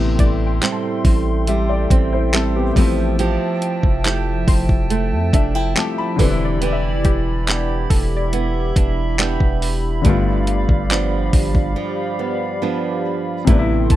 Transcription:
Already playing: 808-style bass A1, nylon-string guitar A2 E4, grand piano C3 G3 A3 B3 E4, analog synth pad A4 E5 G5 C6
0.19 808-style bass A1, synth pluck D5, kick, closed hi-hat
0.47 synth pluck G5
0.62 nylon-string guitar G3 C4 E4, clap, closed hi-hat
0.72 synth pluck A5
1.05 808-style bass A1, kick, open hi-hat
1.47 nylon-string guitar G3, grand piano G4 E5, closed hi-hat
1.69 grand piano D5
1.90 808-style bass A1, nylon-string guitar C4, kick, closed hi-hat
2.13 grand piano E4 C5
2.33 nylon-string guitar G3 C4 E4, grand piano C4 A4, clap, closed hi-hat
2.56 grand piano B3 G4
2.73 808-style bass A1, grand piano F3 G3 A3, nylon-string guitar F3, analog synth pad F3 A5, kick, open hi-hat
2.79 grand piano C4 E4
3.19 nylon-string guitar F3 G4, closed hi-hat
3.62 closed hi-hat
3.83 808-style bass F1, kick
4.05 nylon-string guitar A3 E4 G4, clap, closed hi-hat
4.48 808-style bass F1, synth pluck C5, kick, open hi-hat
4.69 kick
4.90 nylon-string guitar A3, closed hi-hat
5.12 808-style bass F2
5.33 808-style bass F1, nylon-string guitar D4, grand piano E5, kick, closed hi-hat
5.55 nylon-string guitar E4, grand piano G5
5.75 grand piano F3 G3 A3 C4 G4 A5, nylon-string guitar A3 E4 G4, clap, closed hi-hat
5.98 grand piano B5
6.16 808-style bass E1, grand piano D3 G3 B4, nylon-string guitar E3, analog synth pad E4 G4 D5 B5, synth pluck A4, kick, open hi-hat
6.22 grand piano C4 D4
6.30 grand piano E4
6.45 synth pluck D5
6.62 nylon-string guitar E3 G4, closed hi-hat
6.73 synth pluck E5
6.84 808-style bass F1
7.05 808-style bass E1, synth pluck G4, kick, closed hi-hat
7.47 nylon-string guitar B3 D4 G4, clap, closed hi-hat
7.90 808-style bass E1, synth pluck A4, analog synth pad E5, kick, open hi-hat
8.17 synth pluck D5
8.33 nylon-string guitar B3, closed hi-hat
8.76 808-style bass E1, nylon-string guitar D4, kick, closed hi-hat
9.19 nylon-string guitar B3 D4 G4, synth pluck D5, clap, closed hi-hat
9.40 808-style bass E1, kick
9.62 open hi-hat
10.02 808-style bass G1, nylon-string guitar G2 D4, grand piano D3 G3 A3, analog synth pad G4 D5 F5, kick, closed hi-hat
10.08 grand piano B3 F4
10.47 closed hi-hat
10.69 808-style bass G1, kick
10.90 nylon-string guitar F3 B3 D4, synth pluck D5, clap, closed hi-hat
11.33 808-style bass G1, kick, open hi-hat
11.55 808-style bass G1, kick
11.76 nylon-string guitar F3
12.19 nylon-string guitar B3
12.62 nylon-string guitar F3 B3 D4
13.45 808-style bass A1, nylon-string guitar A2 E4, grand piano C3 G3 A3, analog synth pad A4 E5 G5 C6, kick, closed hi-hat
13.50 grand piano B3 D4
13.59 grand piano E4
13.90 808-style bass A1, synth pluck A5, kick, closed hi-hat

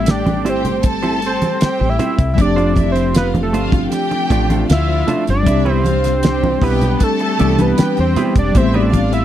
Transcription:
Already playing: fretless electric bass A1, tine electric piano G3 A3 C4 G4, string machine A3 C4 G4, analog synth lead E5
0.06 violin section G4 G5, analog synth lead D5, snare, closed hi-hat, muted conga
0.26 muted clean electric guitar stroke, closed hi-hat, muted conga, high conga, low conga
0.44 fretless electric bass G1, clean electric guitar C4 E4 G4 C5, violin section G4 G5, closed hi-hat
0.49 analog synth lead C5
0.64 muted clean electric guitar stroke, closed hi-hat, low conga
0.83 violin section A4 A5, muted clean electric guitar stroke, kick, closed hi-hat, muted conga
1.03 clean electric guitar C4 E4 G4 C5, closed hi-hat, muted conga
1.22 muted clean electric guitar stroke, closed hi-hat
1.26 analog synth lead C5
1.41 muted clean electric guitar stroke, closed hi-hat, high conga
1.60 violin section G4 G5, muted fretless electric bass stroke, snare, closed hi-hat
1.80 fretless electric bass A1, muted clean electric guitar stroke
1.89 analog synth lead E5
1.99 clean electric guitar C4 E4 G4 C5, closed hi-hat, low conga
2.18 fretless electric bass C2, muted clean electric guitar stroke, kick, closed hi-hat
2.34 tine electric piano F3 A3, violin section D4 D5, analog synth lead E5, muted clean electric guitar stroke
2.38 fretless electric bass F1, string machine F3 C4 D4 A4, tine electric piano C4 D4, analog synth lead D5, kick, closed hi-hat, muted conga
2.42 tine electric piano G4
2.56 clean electric guitar A3 D4 F4 C5, closed hi-hat
2.76 violin section E4 E5, kick, closed hi-hat, high conga
2.92 analog synth lead C5, muted clean electric guitar stroke, closed hi-hat
3.14 violin section F4 F5, analog synth lead B4, snare, closed hi-hat
3.34 muted clean electric guitar stroke, closed hi-hat, muted conga, high conga, low conga
3.43 analog synth lead A4
3.53 fretless electric bass G1, clean electric guitar A3 D4 F4 C5, violin section F4 F5, closed hi-hat
3.72 muted clean electric guitar stroke, kick, closed hi-hat, low conga
3.91 violin section G4 G5, muted clean electric guitar stroke, closed hi-hat, muted conga
4.11 muted clean electric guitar stroke, closed hi-hat, muted conga
4.30 fretless electric bass A1, clean electric guitar A3 D4 F4 D5, kick, closed hi-hat
4.50 clean electric guitar A3 D4 F4 C5, closed hi-hat, high conga
4.69 fretless electric bass D2, violin section F4 F5, analog synth lead E5, snare, closed hi-hat, muted conga
4.88 muted clean electric guitar stroke
5.07 clean electric guitar A3 D4 F4 C5, closed hi-hat, low conga
5.27 fretless electric bass G1, analog synth lead D5, muted clean electric guitar stroke, closed hi-hat
5.43 fretless electric bass C2, tine electric piano G3 C4, string machine G3 C4 G4, violin section E4 E5, muted clean electric guitar stroke, kick, closed hi-hat, muted conga
5.49 tine electric piano D4 G4
5.65 clean electric guitar B3 E4 G4 B4, muted conga
5.71 analog synth lead C5
5.84 violin section F4 F5, analog synth lead C5, closed hi-hat, high conga
6.04 muted clean electric guitar stroke, snare, closed hi-hat
6.23 violin section G4 G5, snare, closed hi-hat, muted conga
6.43 muted clean electric guitar stroke, muted conga, high conga, low conga
6.62 fretless electric bass B1, clean electric guitar B3 E4 G4 B4, violin section G4 G5, analog synth lead B4, kick, open hi-hat
6.81 muted clean electric guitar stroke, closed hi-hat, low conga
7.00 violin section A4 A5, analog synth lead A4, muted clean electric guitar stroke, kick, closed hi-hat
7.19 analog synth lead A4, muted clean electric guitar stroke, closed hi-hat
7.38 fretless electric bass C2, tine electric piano E3 G3 C4 D4 G4, clean electric guitar B3 E4 G4 D5, closed hi-hat
7.59 clean electric guitar B3 E4 G4 B4, analog synth lead B4, closed hi-hat, high conga
7.77 violin section G4 G5, muted fretless electric bass stroke, snare, closed hi-hat, muted conga
7.97 fretless electric bass E2, analog synth lead C5, muted clean electric guitar stroke, closed hi-hat
8.16 clean electric guitar B3 E4 G4 B4, closed hi-hat, low conga
8.36 fretless electric bass E1, analog synth lead D5, muted clean electric guitar stroke, kick, closed hi-hat
8.52 fretless electric bass A1, tine electric piano G3 A3 B3, string machine A3, violin section E4 E5, muted clean electric guitar stroke, kick, closed hi-hat, muted conga
8.57 tine electric piano C4 G4, analog synth lead C5
8.74 clean electric guitar A3 E4 G4 C5, analog synth lead D5, muted conga
8.93 violin section F4 F5, kick, closed hi-hat, high conga
9.12 analog synth lead E5, muted clean electric guitar stroke, closed hi-hat

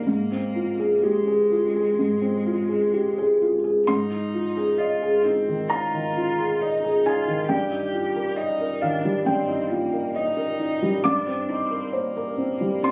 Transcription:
0.07 felt piano G#2, cello A#3
0.32 felt piano C4
0.55 felt piano F4
0.80 felt piano G#4
1.03 cello G#3, felt piano G4
1.27 felt piano G#4
1.52 felt piano F4
1.76 felt piano G#4
1.99 felt piano G#2
2.21 felt piano C4
2.46 felt piano F4
2.69 felt piano G#4
2.94 felt piano G4
3.18 felt piano G#4
3.42 felt piano F4
3.64 felt piano G#4
3.87 felt piano G#2 C6, cello D#4
4.11 felt piano D#4
4.34 felt piano F4
4.57 felt piano G#4
4.78 cello F4, felt piano D#5
5.02 felt piano G#4
5.23 cello C4, felt piano D#4
5.49 felt piano D#3
5.69 felt piano D#4 A#5, cello F4
5.94 felt piano D#3
6.17 felt piano F4
6.39 felt piano G#4
6.61 cello D#4, felt piano D#5
6.84 felt piano G#4
7.06 felt piano D#4 G#5, cello F4
7.27 felt piano D#3
7.49 felt piano G2 G5, cello G4
7.72 felt piano D#4
7.93 felt piano F4
8.16 felt piano A#4
8.36 cello D#4, felt piano D#5
8.60 felt piano A#4
8.81 felt piano D#3 F5, cello D4
9.05 felt piano G3
9.26 felt piano G2 G5, cello C4
9.49 felt piano D#4
9.70 cello A#3, felt piano F4
9.93 felt piano A#4
10.15 cello D#4, felt piano D#5
10.37 felt piano A#4
10.60 felt piano D#4
10.82 felt piano G3
11.04 felt piano G2 D6, cello D4
11.27 felt piano C4
11.49 cello C4, felt piano D#4
11.71 felt piano A#4
11.93 cello A#3, felt piano C5
12.17 felt piano A#4
12.38 felt piano C4
12.61 felt piano G3
12.83 felt piano C4 C6, cello D4

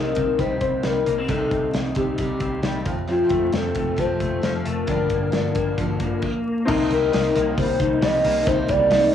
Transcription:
Already playing: picked electric bass C2, steel-string acoustic guitar C3 G3 C4 D#4, clean electric guitar C3 C4, soft synth lead A#4
0.15 picked electric bass C2, steel-string acoustic guitar G3 C4 D#4, kick, closed hi-hat
0.39 picked electric bass C2, steel-string acoustic guitar C3 G3 C4 D#4, soft synth lead C5, kick, closed hi-hat
0.61 picked electric bass C2, clean electric guitar C4, soft synth lead C5, kick, closed hi-hat
0.83 picked electric bass C2, steel-string acoustic guitar C3 G3 C4 D#4, soft synth lead A#4, snare, closed hi-hat
1.06 picked electric bass C2, steel-string acoustic guitar G3 C4 D#4, clean electric guitar A#3, closed hi-hat
1.18 clean electric guitar C4
1.29 picked electric bass C2, steel-string acoustic guitar C3 G3 C4 D#4, soft synth lead A4, kick, closed hi-hat
1.51 picked electric bass C2, clean electric guitar C4, kick, closed hi-hat
1.73 picked electric bass C2, steel-string acoustic guitar C3 G3 C4 D#4, snare, closed hi-hat
1.95 picked electric bass C2, steel-string acoustic guitar G3 C4 D#4, soft synth lead G4, kick, closed hi-hat
2.18 picked electric bass C2, steel-string acoustic guitar C3 G3 C4 D#4, soft synth lead G4, kick, closed hi-hat
2.40 picked electric bass C2, clean electric guitar C4, kick, closed hi-hat
2.62 picked electric bass C2, steel-string acoustic guitar C3 G3 C4 D#4, snare, closed hi-hat
2.85 picked electric bass F1, clean electric guitar F2, steel-string acoustic guitar F3 A3 C4, kick, closed hi-hat
3.07 steel-string acoustic guitar F2 C3 F3 A3 C4, soft synth lead F4, closed hi-hat
3.29 picked electric bass F1, clean electric guitar A3, kick, closed hi-hat
3.52 picked electric bass F1, steel-string acoustic guitar C3 F3 A3 C4, soft synth lead A4, snare, closed hi-hat
3.75 picked electric bass F1, steel-string acoustic guitar F3 A3 C4, kick, closed hi-hat
3.96 picked electric bass F1, steel-string acoustic guitar F2 C3 F3 A3 C4, soft synth lead C5, kick, closed hi-hat
4.20 picked electric bass F1, clean electric guitar A3, kick, closed hi-hat
4.42 picked electric bass F1, steel-string acoustic guitar C3 F3 A3 C4, soft synth lead C5, snare, closed hi-hat
4.65 picked electric bass F1, clean electric guitar A3, soft synth lead A#4, closed hi-hat
4.87 picked electric bass G1, steel-string acoustic guitar G2 D3 F3 A#3 D4, kick, closed hi-hat
5.10 picked electric bass G1, clean electric guitar A#3, kick, closed hi-hat
5.32 picked electric bass G1, steel-string acoustic guitar D3 F3 A#3 D4, snare, closed hi-hat
5.55 picked electric bass G1, steel-string acoustic guitar F3 A#3 D4, kick, closed hi-hat
5.78 picked electric bass G1, steel-string acoustic guitar G2 D3 F3 A#3 D4, kick, closed hi-hat
6.00 picked electric bass G1, clean electric guitar A#3, kick, closed hi-hat
6.22 kick, crash
6.65 picked electric bass C2, steel-string acoustic guitar C3 G3 A#3 D#4, upright piano C4 D#4 A#4, kick, crash
6.90 picked electric bass C2, steel-string acoustic guitar G3 A#3 D#4, soft synth lead A#4, hi-hat pedal, open hi-hat
7.13 picked electric bass C2, steel-string acoustic guitar C3 G3 A#3 D#4, soft synth lead A#4, snare, hi-hat pedal, open hi-hat
7.36 picked electric bass C2, steel-string acoustic guitar G3 A#3 D#4, hi-hat pedal, open hi-hat
7.57 picked electric bass C2, clean electric guitar G3, soft synth lead C5, kick, hi-hat pedal, open hi-hat
7.79 picked electric bass C2, clean electric guitar D#4, kick, hi-hat pedal, open hi-hat
8.02 picked electric bass C2, steel-string acoustic guitar C3 G3 A#3 D#4, soft synth lead D#5, snare, hi-hat pedal, open hi-hat
8.24 picked electric bass C2, steel-string acoustic guitar G3 A#3 D#4, hi-hat pedal, open hi-hat
8.46 picked electric bass C2, steel-string acoustic guitar C3 G3 A#3 D#4, soft synth lead C5, kick, hi-hat pedal, open hi-hat
8.68 picked electric bass C2, steel-string acoustic guitar G3 A#3 D#4, soft synth lead D5, kick, hi-hat pedal, open hi-hat
8.90 picked electric bass C2, steel-string acoustic guitar C3 G3 A#3 D#4, snare, hi-hat pedal, open hi-hat

